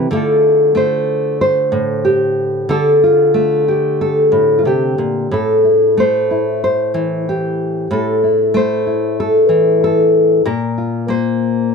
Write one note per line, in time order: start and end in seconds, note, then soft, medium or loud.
0.00 0.10 E3 medium
0.00 0.11 A3 medium
0.00 0.11 C4 soft
0.00 0.11 G4 medium
0.00 0.11 A4 medium
0.11 2.68 D3 medium
0.11 0.74 A3 soft
0.11 2.72 E4 soft
0.11 2.04 F4 soft
0.11 0.76 A4 medium
0.75 3.34 A3 medium
0.75 1.40 C5 medium
1.41 2.70 C5 loud
1.72 2.69 A2 medium
2.05 3.01 G4 medium
2.69 5.32 D3 medium
2.69 3.67 A4 medium
3.04 3.67 F4 medium
3.34 5.97 A3 medium
3.68 4.58 G4 medium
4.01 5.25 A4 medium
4.32 4.65 A2 medium
4.59 4.66 F4 medium
4.65 4.98 C3 medium
4.65 5.32 G4 medium
4.98 5.31 A#2 soft
5.31 7.89 A2 medium
5.31 5.99 A4 medium
5.64 6.30 E4 soft
5.97 7.87 A3 medium
5.97 6.63 C5 medium
6.31 7.27 E4 soft
6.64 7.92 C5 medium
6.94 7.87 E3 medium
7.29 8.23 G4 medium
7.91 10.44 A2 medium
7.91 8.56 A4 medium
8.24 8.86 E4 soft
8.54 10.41 A3 medium
8.54 9.19 C5 medium
8.87 10.45 E4 soft
9.20 9.82 A4 medium
9.49 10.41 E3 medium
9.84 10.46 A4 medium
10.45 11.75 A#2 medium
10.45 11.09 A#4 medium
10.78 11.75 F4 soft
11.08 11.75 A#3 medium
11.08 11.73 C5 medium